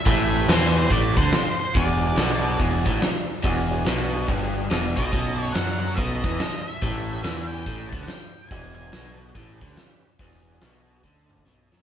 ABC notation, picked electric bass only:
X:1
M:4/4
L:1/8
Q:"Swing" 1/4=142
K:A
V:1 name="Picked electric bass" clef=bass
A,,,2 E,,2 A,,, D,, z2 | E,,,2 B,,,2 E,,, A,,, z2 | E,,,2 B,,,2 =G,,,2 E,,, B,,, | B,,,2 F,,2 B,,, E,, z2 |
A,,,2 E,,2 A,,, D,, z2 | E,,,2 B,,,2 A,,, D,, z2 | E,,,2 B,,,2 D,,2 B,,, F,, |]